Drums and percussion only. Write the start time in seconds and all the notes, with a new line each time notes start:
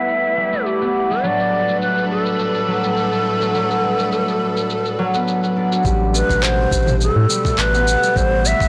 0.08 shaker
0.24 shaker
0.53 shaker
0.66 shaker
0.82 shaker
1.11 shaker
1.24 shaker
1.40 shaker
1.68 shaker
1.82 shaker
1.97 shaker
2.26 shaker
2.39 shaker
2.55 shaker
2.84 shaker
2.97 shaker
3.12 shaker
3.41 shaker
3.55 shaker
3.70 shaker
3.99 shaker
4.12 shaker
4.28 shaker
4.57 shaker
4.70 shaker
4.85 shaker
5.14 shaker
5.28 shaker
5.44 shaker
5.72 shaker
5.85 kick, shaker
6.15 shaker
6.29 kick, shaker
6.43 clap, shaker
6.71 kick, shaker
6.87 mid tom, shaker
7.01 shaker
7.30 shaker
7.45 kick, mid tom, shaker
7.58 clap, shaker
7.75 shaker
7.88 shaker
8.03 shaker
8.16 kick, shaker
8.45 shaker
8.60 kick, shaker